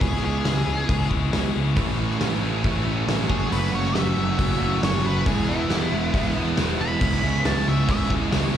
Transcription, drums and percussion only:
0.01 kick, open hi-hat
0.45 snare, open hi-hat
0.89 kick, open hi-hat
1.11 kick
1.33 snare, open hi-hat
1.77 kick, open hi-hat
2.10 snare
2.21 snare, open hi-hat
2.64 kick, open hi-hat
3.08 snare, open hi-hat
3.30 kick
3.52 open hi-hat
3.85 snare
3.95 snare, open hi-hat
4.39 kick, open hi-hat
4.83 snare, open hi-hat
5.26 kick, open hi-hat
5.70 snare, open hi-hat
6.14 kick, open hi-hat
6.57 snare, open hi-hat
7.01 kick, open hi-hat
7.34 snare
7.45 snare, open hi-hat
7.88 kick, open hi-hat
8.10 kick
8.32 snare, open hi-hat

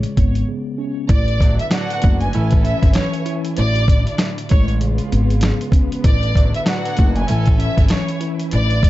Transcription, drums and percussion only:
0.03 closed hi-hat
0.17 kick, closed hi-hat
0.35 closed hi-hat
1.09 kick, closed hi-hat
1.28 closed hi-hat
1.41 kick, closed hi-hat
1.59 closed hi-hat
1.71 snare, closed hi-hat
1.90 closed hi-hat
2.02 kick, closed hi-hat
2.21 closed hi-hat
2.33 closed hi-hat
2.51 kick, closed hi-hat
2.65 closed hi-hat
2.83 kick, snare, closed hi-hat
2.93 snare, closed hi-hat
3.13 closed hi-hat
3.26 closed hi-hat
3.45 closed hi-hat
3.57 closed hi-hat
3.75 closed hi-hat
3.88 kick, closed hi-hat
4.07 closed hi-hat
4.18 snare, closed hi-hat
4.38 closed hi-hat
4.49 kick, closed hi-hat
4.68 closed hi-hat
4.81 closed hi-hat
4.98 closed hi-hat
5.12 closed hi-hat
5.30 closed hi-hat
5.41 snare, closed hi-hat
5.61 closed hi-hat
5.72 kick, closed hi-hat
5.92 closed hi-hat
6.04 kick, closed hi-hat
6.23 closed hi-hat
6.35 kick, closed hi-hat
6.54 closed hi-hat
6.66 snare, closed hi-hat
6.85 closed hi-hat
6.97 kick, closed hi-hat
7.16 closed hi-hat
7.28 closed hi-hat
7.46 kick, closed hi-hat
7.60 closed hi-hat
7.78 kick, snare, closed hi-hat
7.88 snare, closed hi-hat
8.08 closed hi-hat
8.21 closed hi-hat
8.39 closed hi-hat
8.51 closed hi-hat
8.70 closed hi-hat
8.83 kick, closed hi-hat

